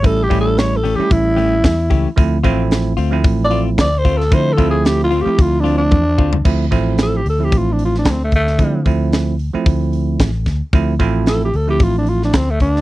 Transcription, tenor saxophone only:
0.06 0.24 A4 loud
0.23 0.40 G4 loud
0.41 0.60 A4 loud
0.59 0.78 C#5 loud
0.77 0.97 A4 medium
0.95 1.14 G4 loud
1.12 2.16 E4 loud
3.45 3.61 D5 loud
3.81 4.00 D5 loud
3.98 4.19 C5 loud
4.18 4.36 A4 loud
4.34 4.55 C5 loud
4.53 4.69 A4 medium
4.70 4.88 G#4 loud
4.86 5.03 G4 loud
5.04 5.23 F4 loud
5.21 5.43 G4 loud
5.42 5.62 F4 loud
5.60 5.76 D4 loud
5.78 6.45 D4 loud
7.03 7.18 A4 loud
7.16 7.27 G4 medium
7.30 7.46 A4 medium
7.44 7.59 G4 medium
7.58 7.74 F4 medium
7.72 7.81 D4 medium
7.85 7.96 F4 medium
7.99 8.13 D4 medium
8.11 8.22 C4 medium
8.24 8.34 A3 medium
8.36 8.86 A3 loud
11.29 11.42 A4 loud
11.45 11.57 G4 medium
11.56 11.68 A4 medium
11.70 11.85 G4 loud
11.83 11.95 F4 loud
11.98 12.10 D4 medium
12.09 12.22 F4 medium
12.24 12.37 D4 medium
12.36 12.52 C4 medium
12.50 12.61 A3 loud
12.61 12.81 D4 loud

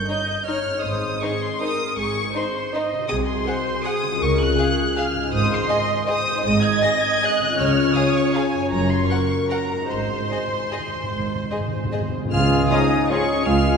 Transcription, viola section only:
0.08 0.46 D#5 medium
0.48 0.83 C#5 medium
0.83 1.22 C5 medium
1.21 1.60 G#4 medium
1.61 1.97 A#4 medium
1.97 2.35 G#4 medium
2.34 2.72 C5 medium
2.73 3.10 D#5 medium
3.10 3.47 G#4 medium
3.46 3.84 C5 medium
3.85 4.20 G#4 medium
4.20 4.56 A#4 medium
4.57 5.31 G#4 medium
5.32 5.68 C5 medium
5.69 6.07 D#5 medium
6.07 6.44 C5 medium
6.44 7.58 D#5 medium
7.58 8.69 C#5 medium
8.72 9.09 C#5 medium
9.09 9.89 A#4 medium
9.90 12.10 C5 medium
12.71 12.79 G#3 medium
12.71 12.79 C#4 medium
13.10 13.18 G#3 medium
13.10 13.18 C#4 medium

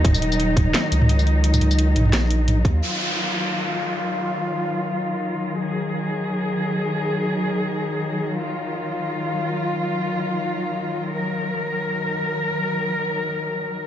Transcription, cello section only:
0.00 2.78 D#3 medium
0.00 2.78 F#3 medium
0.00 2.79 D#4 medium
2.83 13.87 D#3 medium
2.83 13.87 F#3 medium
2.83 5.59 F4 medium
5.60 8.36 G#4 medium
8.37 11.14 F4 medium
11.15 13.87 A#4 medium

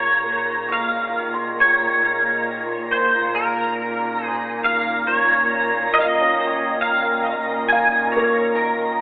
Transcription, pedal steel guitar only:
0.00 0.72 C#5 medium
0.72 1.34 F5 medium
1.60 2.87 C#5 medium
2.91 3.36 C5 medium
3.35 4.25 A#4 medium
4.25 4.68 G#4 medium
4.64 5.09 F5 medium
5.07 5.97 C#5 loud
5.94 6.00 D#5 medium
6.00 6.08 F5 medium
6.08 6.81 D#5 medium
6.81 7.68 F5 medium
7.69 8.13 G#5 medium
8.12 8.57 C#5 medium
8.55 9.01 A#4 medium

